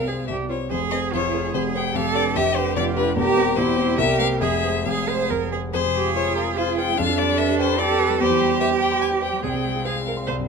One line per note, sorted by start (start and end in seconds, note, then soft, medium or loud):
0.00 0.29 C2 medium
0.00 0.29 C3 medium
0.00 0.08 C4 medium
0.00 0.47 C4 medium
0.00 0.08 G#4 medium
0.00 0.08 C5 medium
0.00 0.27 F5 loud
0.07 0.26 C4 medium
0.07 0.27 G#4 medium
0.07 0.27 C5 medium
0.28 0.49 C2 medium
0.28 0.49 C3 medium
0.28 0.48 G4 medium
0.28 0.36 E5 medium
0.49 0.69 C4 medium
0.49 0.57 F4 medium
0.49 0.69 G4 medium
0.49 0.69 C5 medium
0.49 0.70 C#5 medium
0.70 0.91 F1 medium
0.70 0.91 F2 medium
0.70 1.91 G#4 medium
0.70 1.15 G#4 loud
0.70 0.78 C5 loud
0.91 1.11 C4 medium
0.91 1.11 G#4 medium
0.91 1.11 C5 medium
0.91 0.99 D#5 loud
1.13 1.33 F1 medium
1.13 1.33 F2 medium
1.13 1.54 F4 medium
1.13 1.54 C#5 loud
1.34 1.52 C4 medium
1.34 1.52 G#4 medium
1.34 1.52 C5 medium
1.54 1.74 F1 medium
1.54 1.74 F2 medium
1.54 1.95 G#4 medium
1.54 1.62 C5 loud
1.75 1.93 C4 medium
1.75 1.93 G#4 medium
1.75 1.94 C5 medium
1.75 1.97 G5 loud
1.95 2.15 F1 medium
1.95 2.15 F2 medium
1.95 3.14 G4 medium
1.95 2.38 A4 loud
1.95 2.15 F5 loud
2.15 2.34 D4 medium
2.15 2.34 G4 medium
2.15 2.34 B4 medium
2.15 2.23 D5 loud
2.35 2.56 F1 medium
2.35 2.55 F2 medium
2.35 2.79 G4 loud
2.35 2.57 E5 loud
2.56 2.74 D4 medium
2.56 2.74 G4 medium
2.56 2.75 B4 medium
2.56 2.75 C5 loud
2.76 2.96 F1 medium
2.76 2.96 F2 medium
2.76 3.16 F4 loud
2.76 2.84 D5 loud
2.96 3.14 D4 medium
2.96 3.15 G4 medium
2.96 3.16 B4 loud
2.96 3.15 B4 medium
3.16 3.36 E1 medium
3.16 3.36 E2 loud
3.16 3.54 G4 loud
3.16 3.59 G4 loud
3.16 3.58 A#4 loud
3.36 3.55 C4 medium
3.36 3.55 G4 medium
3.36 3.55 C5 medium
3.57 3.77 E1 medium
3.57 3.77 E2 loud
3.57 4.00 E4 loud
3.57 4.00 G4 loud
3.57 3.97 C5 loud
3.77 3.96 C4 medium
3.77 3.96 G4 medium
3.77 3.96 C5 medium
3.98 4.19 C2 loud
3.98 4.19 C3 medium
3.98 4.41 G4 loud
3.98 4.42 A#4 loud
3.98 4.18 E5 loud
4.19 4.39 A#3 medium
4.19 4.39 G4 medium
4.19 4.39 C5 medium
4.19 4.27 F5 loud
4.41 4.63 F1 medium
4.41 4.63 F2 medium
4.41 4.85 G#4 medium
4.41 4.81 G#4 medium
4.41 4.87 E5 loud
4.63 4.83 G#3 medium
4.63 4.84 G#4 medium
4.63 4.84 C5 medium
4.85 5.07 F1 medium
4.85 5.07 F2 medium
4.85 5.51 G#4 medium
4.85 5.10 G#4 loud
4.85 5.30 F5 loud
5.08 5.28 G#3 medium
5.08 5.28 G#4 medium
5.08 5.28 C5 medium
5.08 5.32 C5 loud
5.30 5.51 F1 medium
5.30 5.51 F2 medium
5.30 5.52 A#4 loud
5.52 5.72 G#3 medium
5.52 5.60 G#4 medium
5.52 5.72 G#4 medium
5.52 5.72 C5 medium
5.73 6.94 F2 medium
5.73 5.82 G#4 medium
5.73 6.59 G#4 loud
5.73 6.13 C5 loud
5.85 6.01 C3 medium
5.95 6.12 G#3 medium
5.95 6.15 G4 medium
6.06 6.22 F4 medium
6.16 6.58 F4 medium
6.16 6.32 C5 medium
6.16 6.35 C#5 loud
6.26 6.43 G#4 medium
6.36 6.44 A#4 loud
6.36 6.53 F5 medium
6.47 6.63 C6 medium
6.57 6.98 F4 medium
6.57 6.99 G#4 medium
6.57 6.76 C5 loud
6.57 6.73 F5 medium
6.68 6.84 G#4 medium
6.77 6.94 C5 medium
6.77 6.99 G5 loud
6.89 6.98 G#3 medium
6.97 8.17 F2 loud
6.97 7.81 D4 loud
6.97 7.78 A4 medium
6.97 7.19 F5 loud
7.09 7.25 F3 medium
7.18 7.35 G3 medium
7.18 7.39 D5 loud
7.30 7.45 G4 medium
7.38 7.55 B4 medium
7.38 7.58 E5 loud
7.49 7.65 G4 medium
7.59 7.80 C5 loud
7.59 7.75 G5 medium
7.69 7.85 B5 medium
7.79 8.19 G4 loud
7.79 8.22 A4 loud
7.79 8.00 D5 loud
7.79 7.96 G5 medium
7.89 8.06 G4 medium
7.99 8.19 B4 loud
7.99 8.16 B4 medium
8.10 8.20 G3 medium
8.20 9.39 E2 loud
8.20 8.58 G4 loud
8.20 9.43 G4 loud
8.20 8.60 C5 loud
8.30 8.46 E3 medium
8.40 8.57 G3 medium
8.51 8.67 G4 medium
8.60 9.44 G4 loud
8.60 8.77 C5 medium
8.60 8.68 E5 loud
8.71 8.87 G4 medium
8.80 9.01 G5 loud
8.80 8.97 G5 medium
8.92 9.08 C6 medium
9.01 9.18 G5 medium
9.01 9.09 G#5 loud
9.11 9.28 G4 medium
9.22 9.39 C5 medium
9.22 9.43 G5 loud
9.33 9.43 G3 medium
9.43 10.25 C2 medium
9.43 10.47 C4 medium
9.43 9.85 G#4 medium
9.43 9.87 G5 loud
9.54 9.71 C3 medium
9.64 9.82 G#3 medium
9.75 9.92 F4 medium
9.85 9.93 G#4 medium
9.85 10.02 C5 medium
9.85 10.28 F5 loud
9.96 10.13 G#4 medium
10.07 10.15 A#4 medium
10.07 10.24 F5 medium
10.17 10.28 C6 medium
10.27 10.48 C2 medium
10.27 10.35 C5 loud
10.38 10.48 G2 medium